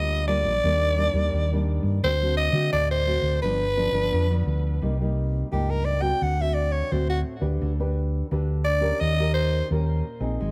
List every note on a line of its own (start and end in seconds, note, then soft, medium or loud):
0.00 0.45 D2 medium
0.00 0.60 D3 medium
0.00 0.22 G3 medium
0.00 0.22 A#3 medium
0.00 0.22 F4 medium
0.00 0.27 D#5 loud
0.27 0.50 G3 medium
0.27 0.51 A#3 medium
0.27 0.51 F4 medium
0.27 1.64 D5 loud
0.43 0.59 A#1 medium
0.63 1.08 D#2 medium
0.63 1.30 D#3 medium
0.63 0.93 G3 medium
0.63 0.93 A#3 medium
0.63 0.93 D4 medium
0.97 1.08 G3 medium
0.97 1.08 A#3 medium
0.97 1.09 D4 medium
1.13 1.29 D#2 medium
1.13 1.44 G3 medium
1.13 1.44 A#3 medium
1.13 1.44 D4 medium
1.33 1.77 D#2 medium
1.33 2.00 D#3 medium
1.52 1.98 G3 medium
1.52 1.98 A#3 medium
1.52 1.99 D4 medium
1.83 1.99 G2 medium
2.03 2.47 D2 medium
2.03 2.69 D3 medium
2.03 2.14 A3 medium
2.03 2.14 C4 medium
2.03 2.14 F#4 medium
2.03 2.36 C5 loud
2.22 2.50 A3 medium
2.22 2.51 C4 medium
2.22 2.51 F#4 medium
2.37 2.70 D#5 loud
2.52 2.68 D3 medium
2.52 3.01 A3 medium
2.52 3.01 C4 medium
2.52 3.01 F#4 medium
2.72 3.17 D2 medium
2.72 3.39 A2 medium
2.72 2.89 D5 loud
2.91 3.39 C5 medium
3.06 3.39 A3 medium
3.06 3.39 C4 medium
3.06 3.39 F#4 medium
3.22 3.38 D2 medium
3.42 3.87 G1 loud
3.42 4.09 G2 medium
3.42 3.63 F3 medium
3.42 3.63 B3 medium
3.42 3.63 D4 medium
3.42 4.43 B4 medium
3.76 3.87 F3 medium
3.76 3.87 B3 medium
3.76 3.88 D4 medium
3.92 4.08 G1 medium
3.92 4.23 F3 medium
3.92 4.23 B3 medium
3.92 4.23 D4 medium
4.12 4.44 F2 medium
4.12 4.78 D3 medium
4.30 4.77 F3 medium
4.30 4.77 B3 medium
4.30 4.77 D4 medium
4.46 4.78 D2 medium
4.82 5.41 C2 medium
4.82 5.48 C3 medium
4.82 4.94 G3 medium
4.82 4.94 A#3 soft
4.82 4.94 D#4 medium
5.00 5.47 G3 medium
5.00 5.47 A#3 medium
5.00 5.47 D#4 medium
5.51 6.11 C#2 medium
5.51 6.18 G2 medium
5.51 5.98 G3 medium
5.51 5.99 A#3 medium
5.51 5.99 D#4 medium
5.51 5.72 G4 medium
5.70 5.86 A#4 medium
5.85 6.03 D5 medium
6.01 6.32 A3 medium
6.01 6.32 C4 medium
6.01 6.32 F#4 medium
6.01 6.24 G5 medium
6.21 6.81 D2 medium
6.21 6.88 D3 medium
6.21 6.43 F#5 medium
6.40 6.86 A3 medium
6.40 6.86 C4 medium
6.40 6.87 F#4 medium
6.40 6.56 E5 medium
6.54 6.73 D5 medium
6.71 6.93 C#5 medium
6.91 7.21 D2 loud
6.91 7.58 A2 medium
6.91 7.38 A3 medium
6.91 7.38 C4 medium
6.91 7.38 F#4 medium
6.91 7.09 C5 medium
7.10 7.20 F#4 medium
7.40 7.57 D2 medium
7.40 7.71 D4 medium
7.40 7.72 G4 medium
7.40 7.72 B4 medium
7.61 8.21 D2 medium
7.61 8.27 D3 medium
7.80 8.26 D4 medium
7.80 8.26 G4 medium
7.80 8.26 B4 medium
8.31 8.91 D2 medium
8.31 8.97 D3 medium
8.31 8.64 D4 medium
8.31 8.64 G4 medium
8.31 8.64 B4 medium
8.65 9.02 D5 medium
8.81 9.11 C#4 medium
8.81 9.12 G4 medium
8.81 9.12 A#4 medium
9.01 9.60 D#2 medium
9.01 9.67 D#3 medium
9.01 9.33 D#5 medium
9.19 9.66 C#4 medium
9.19 9.66 G4 medium
9.19 9.66 A#4 medium
9.34 9.67 C5 medium
9.70 10.00 D#2 medium
9.70 10.37 A#2 medium
9.70 10.04 C#4 medium
9.70 10.04 G4 medium
9.70 10.04 A#4 medium
10.20 10.36 A#1 medium
10.20 10.51 C4 medium
10.20 10.51 D#4 medium
10.20 10.51 G#4 medium
10.40 10.51 G#1 loud
10.40 10.51 G#3 medium